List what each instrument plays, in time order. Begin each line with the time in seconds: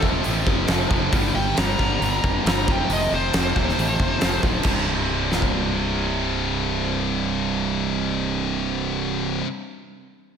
0.02 fingered electric bass D#1, distorted electric guitar F2 C3 F3, kick
0.23 fingered electric bass A1, distorted electric guitar F2 C3 F3, open hi-hat
0.47 fingered electric bass F1, kick
0.67 fingered electric bass F1, distorted electric guitar F2 C3 F3, snare, open hi-hat
0.89 fingered electric bass F1, distorted electric guitar F2 C3 F3, kick
1.11 fingered electric bass G1, distorted electric guitar G2 D3 G3, kick, open hi-hat
1.35 fingered electric bass G1, lead electric guitar G5
1.55 fingered electric bass G1, distorted electric guitar G2 D3 G3, lead electric guitar A#5, snare, open hi-hat
1.78 fingered electric bass G1, distorted electric guitar G2 D3 G3, kick
2.00 fingered electric bass G1, distorted electric guitar G2 D3 G3, open hi-hat
2.24 fingered electric bass F1, kick
2.44 fingered electric bass G1, distorted electric guitar G2 D3 G3, snare, open hi-hat
2.49 lead electric guitar A#5
2.67 fingered electric bass F1, distorted electric guitar F2 C3 F3, kick
2.71 lead electric guitar G5
2.88 fingered electric bass F1, distorted electric guitar F2 C3 F3, open hi-hat
2.93 lead electric guitar D#5
3.12 fingered electric bass F1, lead electric guitar C5
3.33 fingered electric bass F1, distorted electric guitar F2 C3 F3, snare, open hi-hat
3.54 fingered electric bass D#1, distorted electric guitar F2 C3 F3, kick
3.69 snare
3.77 fingered electric bass A1, distorted electric guitar F2 C3 F3, open hi-hat
3.99 fingered electric bass F1, kick
4.21 fingered electric bass F1, distorted electric guitar F2 C3 F3, snare, open hi-hat
4.43 fingered electric bass D1, distorted electric guitar F2 C3 F3, kick
4.63 fingered electric bass C1, distorted electric guitar C2 G2, kick, crash
4.68 distorted electric guitar C3
5.32 snare
5.42 kick